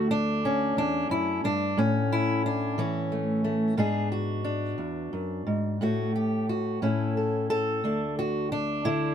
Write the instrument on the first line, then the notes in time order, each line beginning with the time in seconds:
steel-string acoustic guitar
Already playing: D2 A3 F#4
0.11 D4
0.45 C#4
0.77 E2 D4
1.09 F#2 E4
1.44 G2 D4
1.77 A2 C#4
2.12 E4
2.46 D4
2.78 E3 C#4
3.12 A3
3.44 A3
3.77 G#2 B3 D4 G#4
4.12 F#4
4.44 D4
4.78 E2
5.13 F#2
5.47 G#2
5.81 A2 A3 F#4
6.16 G4
6.49 F#4
6.82 A2 C#4 E4 A4
7.17 A4
7.50 A4
7.84 D2 D4
8.19 F#4
8.52 D4
8.85 D3 E4